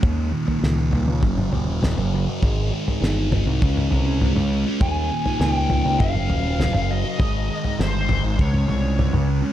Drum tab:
SD |----o-------o---|----o-----------|----o-------o---|----o-----------|
T2 |---------o---o--|------o--o--oo--|---------o---o--|------o--o--oo--|
FT |o--o--o---o-o---|o--o--o---o-o---|o--o--o---o-o---|o--o--o---o-o---|
BD |o-------o-------|o-------o-------|o-------o-------|o-------o-------|